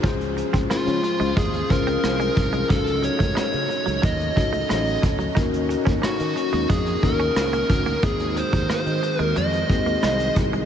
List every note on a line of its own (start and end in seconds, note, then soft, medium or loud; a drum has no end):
0.03 0.41 C#2 medium
0.03 2.68 F3 medium
0.03 2.68 G#3 medium
0.03 1.12 C#4 medium
0.03 0.13 C#4 medium
0.03 2.68 C#4 medium
0.03 1.12 F4 medium
0.03 2.68 F4 medium
0.03 1.12 G#4 medium
0.03 2.68 C5 medium
0.03 1.12 C5 medium
0.03 kick loud
0.03 closed hi-hat medium
0.21 closed hi-hat soft
0.37 muted clean electric guitar stroke soft
0.37 closed hi-hat medium
0.53 0.66 C#2 medium
0.53 0.63 C4 medium
0.53 kick medium
0.53 closed hi-hat soft
0.70 0.80 A#3 medium
0.70 1.33 F4 medium
0.70 cross-stick medium
0.70 closed hi-hat medium
0.87 0.99 C#3 medium
0.87 closed hi-hat soft
1.03 muted clean electric guitar stroke soft
1.03 closed hi-hat medium
1.20 1.33 C#2 medium
1.20 1.30 G#3 medium
1.20 closed hi-hat soft
1.37 1.62 D#2 medium
1.37 1.47 G#3 medium
1.37 1.71 G#4 medium
1.37 kick medium
1.37 closed hi-hat medium
1.54 closed hi-hat soft
1.70 1.95 C#2 medium
1.70 2.51 C#4 medium
1.70 2.52 F4 medium
1.70 2.52 G#4 medium
1.70 2.67 A#4 medium
1.70 2.52 C5 medium
1.70 muted clean electric guitar stroke soft
1.70 kick medium
1.70 closed hi-hat medium
1.87 1.97 C4 medium
1.87 closed hi-hat soft
2.04 2.28 C2 medium
2.04 cross-stick medium
2.04 closed hi-hat medium
2.20 2.30 G#3 medium
2.20 closed hi-hat soft
2.36 2.62 C2 medium
2.36 muted clean electric guitar stroke soft
2.36 kick medium
2.36 closed hi-hat medium
2.53 2.63 G#3 medium
2.53 closed hi-hat soft
2.69 3.08 C#2 medium
2.69 2.80 F#3 medium
2.69 5.34 F#3 medium
2.69 5.34 A3 medium
2.69 3.79 C#4 medium
2.69 8.00 C#4 medium
2.69 3.79 D#4 medium
2.69 8.00 D#4 medium
2.69 10.65 F#4 medium
2.69 3.79 F#4 medium
2.69 3.02 A4 medium
2.69 3.79 A4 medium
2.69 kick loud
2.69 closed hi-hat medium
2.87 closed hi-hat soft
3.03 3.35 C#5 medium
3.03 muted clean electric guitar stroke soft
3.03 closed hi-hat medium
3.19 3.33 C#2 medium
3.19 3.29 A3 medium
3.19 kick medium
3.19 closed hi-hat medium
3.35 3.46 G#3 medium
3.35 4.01 C#5 medium
3.35 muted fretless electric bass stroke soft
3.35 cross-stick loud
3.35 closed hi-hat medium
3.53 3.66 C#3 medium
3.53 closed hi-hat soft
3.69 muted clean electric guitar stroke soft
3.69 closed hi-hat medium
3.86 3.99 C#2 medium
3.86 3.96 F#3 medium
3.86 closed hi-hat soft
4.02 4.28 D#2 medium
4.02 4.13 F#3 medium
4.02 5.00 D#5 medium
4.02 kick medium
4.02 closed hi-hat medium
4.20 closed hi-hat soft
4.36 4.62 C#2 medium
4.36 5.18 C#4 medium
4.36 5.18 D#4 medium
4.36 5.18 F#4 medium
4.36 5.18 A4 medium
4.36 muted clean electric guitar stroke soft
4.36 kick medium
4.36 closed hi-hat medium
4.53 4.63 A3 medium
4.53 closed hi-hat soft
4.69 4.95 A1 medium
4.69 4.80 G#3 medium
4.69 cross-stick medium
4.69 closed hi-hat medium
4.87 closed hi-hat soft
5.02 5.28 D2 medium
5.02 muted clean electric guitar stroke soft
5.02 kick medium
5.02 closed hi-hat medium
5.19 5.29 F#3 medium
5.19 closed hi-hat soft
5.35 5.74 D#2 medium
5.35 8.01 A#3 medium
5.35 6.45 C#4 medium
5.35 5.46 D#4 medium
5.35 6.45 D#4 medium
5.35 6.45 F#4 medium
5.35 6.46 A#4 medium
5.35 kick loud
5.35 closed hi-hat medium
5.54 closed hi-hat soft
5.69 muted clean electric guitar stroke soft
5.69 closed hi-hat medium
5.85 5.99 D#2 medium
5.85 5.96 C#4 medium
5.85 kick medium
5.85 closed hi-hat medium
6.02 6.12 A#3 medium
6.02 6.67 F#4 medium
6.02 muted fretless electric bass stroke soft
6.02 cross-stick medium
6.02 closed hi-hat medium
6.20 6.33 D#3 medium
6.20 closed hi-hat soft
6.36 muted clean electric guitar stroke soft
6.36 closed hi-hat medium
6.53 6.66 D#2 medium
6.53 6.63 G#3 medium
6.53 closed hi-hat soft
6.70 6.95 F2 medium
6.70 6.80 G#3 medium
6.70 7.04 G#4 medium
6.70 kick medium
6.70 closed hi-hat medium
6.86 closed hi-hat soft
7.02 7.28 D#2 medium
7.02 7.84 C#4 medium
7.02 7.85 D#4 medium
7.02 7.85 F#4 medium
7.02 7.85 A#4 medium
7.02 8.04 A#4 medium
7.02 muted clean electric guitar stroke soft
7.02 kick medium
7.02 closed hi-hat medium
7.20 7.30 C#4 medium
7.20 closed hi-hat soft
7.36 7.61 C#2 medium
7.36 cross-stick medium
7.36 closed hi-hat medium
7.53 7.63 A#3 medium
7.53 closed hi-hat medium
7.69 7.95 D2 medium
7.69 muted clean electric guitar stroke soft
7.69 kick medium
7.69 closed hi-hat medium
7.86 7.97 A#3 medium
7.86 closed hi-hat soft
8.03 8.41 D#2 medium
8.03 10.65 D#3 medium
8.03 8.13 G#3 medium
8.03 10.65 G#3 medium
8.03 9.12 C4 medium
8.03 9.12 D#4 medium
8.03 9.12 F#4 medium
8.03 9.12 G#4 medium
8.03 8.38 G#4 medium
8.03 10.65 C5 medium
8.03 kick loud
8.03 closed hi-hat medium
8.20 closed hi-hat soft
8.36 8.69 C5 medium
8.36 muted clean electric guitar stroke soft
8.36 closed hi-hat medium
8.53 8.66 D#2 medium
8.53 8.63 F#3 medium
8.53 kick medium
8.53 closed hi-hat medium
8.70 8.80 A#3 medium
8.70 9.22 C5 medium
8.70 cross-stick loud
8.70 closed hi-hat medium
8.86 8.99 D#3 medium
8.86 closed hi-hat soft
9.03 muted clean electric guitar stroke soft
9.03 closed hi-hat medium
9.19 9.32 D#2 medium
9.19 9.30 G#3 medium
9.19 9.37 A#4 medium
9.19 closed hi-hat soft
9.36 9.62 F2 medium
9.36 9.47 F#3 medium
9.36 10.33 D#5 medium
9.36 closed hi-hat medium
9.53 closed hi-hat soft
9.69 9.95 D#2 medium
9.69 10.51 C4 medium
9.69 10.51 D#4 medium
9.69 10.52 F#4 medium
9.69 10.52 G#4 medium
9.69 muted clean electric guitar stroke soft
9.69 kick medium
9.69 closed hi-hat medium
9.86 9.97 A#3 medium
9.86 closed hi-hat soft
10.03 10.28 C2 medium
10.03 10.13 G#3 medium
10.03 cross-stick medium
10.03 closed hi-hat medium
10.20 closed hi-hat soft
10.36 10.61 C2 medium
10.36 muted clean electric guitar stroke soft
10.36 kick medium
10.36 closed hi-hat medium
10.53 10.63 G#3 medium
10.53 closed hi-hat soft